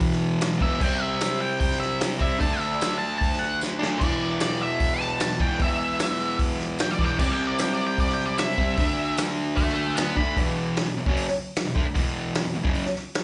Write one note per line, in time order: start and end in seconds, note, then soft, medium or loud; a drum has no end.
0.00 0.59 E2 loud
0.00 0.60 B2 loud
0.00 0.58 E3 loud
0.00 kick loud
0.00 open hi-hat medium
0.12 snare soft
0.41 snare loud
0.41 open hi-hat medium
0.41 tambourine medium
0.59 0.81 E2 medium
0.59 0.78 B2 medium
0.59 0.79 E3 medium
0.59 0.82 E5 loud
0.59 kick loud
0.79 2.19 C3 loud
0.79 2.20 G3 loud
0.79 1.02 G5 medium
0.79 kick loud
0.79 crash loud
0.84 2.18 C4 loud
1.02 1.40 E5 medium
1.20 snare loud
1.20 open hi-hat medium
1.20 tambourine medium
1.41 1.59 G5 medium
1.60 1.79 G5 medium
1.60 kick loud
1.60 open hi-hat medium
1.71 snare soft
1.80 2.00 E5 loud
1.80 snare soft
2.00 snare loud
2.00 open hi-hat medium
2.00 tambourine medium
2.19 2.40 G3 medium
2.19 2.39 C4 medium
2.19 2.41 E5 loud
2.19 kick loud
2.23 2.38 C3 medium
2.39 3.78 D3 loud
2.39 3.80 A3 loud
2.39 2.59 A5 loud
2.39 kick loud
2.39 open hi-hat medium
2.43 3.78 D4 loud
2.59 2.98 E5 loud
2.81 snare loud
2.81 open hi-hat medium
2.81 tambourine loud
2.99 3.17 A5 medium
3.18 3.39 A5 medium
3.18 kick loud
3.18 open hi-hat medium
3.33 snare soft
3.39 3.59 F#5 loud
3.39 snare soft
3.61 snare medium
3.61 tambourine medium
3.79 4.00 A3 medium
3.79 3.99 D4 medium
3.79 snare loud
3.83 4.01 D3 medium
3.99 5.38 E2 loud
3.99 5.39 B2 loud
3.99 4.38 D5 loud
3.99 kick loud
3.99 crash loud
4.03 5.38 E3 loud
4.40 4.61 D5 medium
4.40 snare loud
4.40 open hi-hat medium
4.40 tambourine loud
4.61 4.99 E5 medium
4.80 kick loud
4.80 open hi-hat medium
4.99 5.19 A5 medium
4.99 snare soft
5.20 5.40 A5 medium
5.20 snare loud
5.20 open hi-hat medium
5.20 tambourine loud
5.39 5.57 E2 medium
5.39 5.59 B2 medium
5.39 5.62 E3 medium
5.39 5.60 G5 loud
5.39 kick loud
5.58 6.97 E2 loud
5.58 6.98 B2 loud
5.58 6.38 E5 loud
5.58 kick loud
5.58 open hi-hat medium
5.63 6.97 E3 loud
5.99 snare loud
5.99 open hi-hat medium
5.99 tambourine loud
6.39 kick loud
6.39 open hi-hat medium
6.60 snare soft
6.79 6.93 G5 medium
6.79 snare loud
6.79 open hi-hat medium
6.79 tambourine loud
6.91 7.04 D5 medium
6.99 7.19 E2 medium
6.99 7.18 B2 medium
6.99 7.17 E3 loud
6.99 kick loud
7.04 7.18 G5 loud
7.18 8.57 C3 loud
7.18 8.58 G3 loud
7.18 7.32 D5 medium
7.18 kick loud
7.18 crash loud
7.22 8.56 C4 loud
7.31 7.45 G5 medium
7.47 7.59 D5 loud
7.59 7.73 G5 medium
7.59 snare loud
7.59 open hi-hat medium
7.59 tambourine loud
7.73 7.86 D5 loud
7.87 7.99 G5 medium
7.98 8.12 D5 loud
7.98 kick loud
7.98 open hi-hat medium
8.09 snare soft
8.13 8.25 G5 loud
8.20 snare soft
8.26 8.38 D5 loud
8.38 9.15 E5 loud
8.38 snare loud
8.38 open hi-hat medium
8.38 tambourine loud
8.57 8.77 G3 medium
8.57 8.76 C4 medium
8.57 kick medium
8.62 8.76 C3 medium
8.77 10.15 D3 loud
8.77 10.16 A3 loud
8.77 kick loud
8.77 open hi-hat medium
8.81 10.15 D4 loud
9.17 snare loud
9.17 open hi-hat medium
9.17 tambourine loud
9.56 9.73 E5 medium
9.56 9.74 A5 medium
9.56 kick loud
9.56 open hi-hat medium
9.68 snare soft
9.74 9.94 E5 medium
9.74 9.95 A5 medium
9.95 10.16 F#5 medium
9.95 10.15 B5 medium
9.95 snare loud
9.95 open hi-hat medium
9.95 tambourine loud
10.16 10.37 A3 medium
10.16 10.35 D4 medium
10.16 10.36 B5 loud
10.16 kick medium
10.21 10.37 D3 medium
10.37 10.85 E2 loud
10.37 10.86 B2 loud
10.37 10.87 E3 loud
10.37 kick loud
10.37 open hi-hat medium
10.76 snare loud
10.76 open hi-hat medium
10.86 10.96 E2 medium
10.86 10.97 B2 medium
10.97 11.06 E2 medium
10.97 11.07 B2 medium
11.06 11.26 F#2 medium
11.06 11.26 C#3 loud
11.06 11.26 F#3 loud
11.06 kick loud
11.17 open hi-hat medium
11.28 snare soft
11.56 snare loud
11.56 open hi-hat medium
11.65 11.76 E2 medium
11.65 11.74 B2 medium
11.75 11.85 D3 loud
11.75 11.85 A3 loud
11.75 kick loud
11.86 muted distorted electric guitar stroke medium
11.94 12.44 E2 loud
11.94 12.44 B2 loud
11.94 12.45 E3 loud
11.94 kick loud
11.94 open hi-hat medium
12.35 snare loud
12.35 open hi-hat medium
12.45 12.53 E2 medium
12.45 12.54 B2 medium
12.54 12.63 E2 medium
12.54 12.64 B2 medium
12.63 12.84 F#2 medium
12.63 12.84 C#3 medium
12.63 12.84 F#3 loud
12.63 kick loud
12.74 open hi-hat medium
12.86 snare soft
12.96 snare soft
13.14 snare loud
13.14 open hi-hat medium